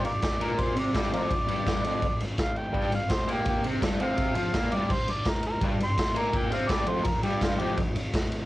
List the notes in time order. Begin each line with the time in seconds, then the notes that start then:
0.04 G2 F4 A#4 D5, ride
0.22 kick, snare, ride
0.40 A#2 A#3 A#4, ride
0.59 C5, kick, ride
0.76 C3 C4 D5, ride
0.94 G2 G3, kick, snare, ride
1.11 F2 F3 F4 A#4 D5, ride
1.29 muted distorted electric guitar stroke, kick, ride
1.47 G2 G3, ride
1.67 kick, snare, ride
1.83 F2 F3, ride
2.02 kick, ride
2.20 muted distorted electric guitar stroke, ride
2.38 kick, snare, ride
2.42 F5
2.56 G5, ride
2.72 G2 G3, kick, ride
2.92 G2 F5, ride
3.10 C5, kick, snare, ride
3.27 A#2 A#3, ride
3.32 G4
3.46 G4, kick, ride
3.64 C3 C4, ride
3.81 G2 G3, kick, snare, ride
4.00 C3 C4 F5, ride
4.17 kick, ride
4.35 F3 F4, ride
4.54 A#2 A#3, kick, snare, ride
4.72 G2 G3 D5, ride
4.90 C5, kick, crash
5.08 muted distorted electric guitar stroke, ride
5.12 D5
5.25 A#4, kick, snare, ride
5.43 A#4, ride
5.61 G2 G3, kick, ride
5.79 G2, ride
5.84 G5 C6
5.98 kick, snare, ride
6.14 A#2 A#3 A#5, ride
6.33 G5, kick, ride
6.51 C3 C4 F5, ride
6.68 G2 G3 D5, kick, snare, ride
6.86 F2 F3 C5, ride
7.04 A#4, muted distorted electric guitar stroke, kick, ride
7.23 G2 G3 G4, ride
7.41 F4, kick, snare, ride
7.59 F2 F3 G4, ride
7.78 kick, ride
7.96 muted distorted electric guitar stroke, ride
8.14 kick, snare, ride
8.32 ride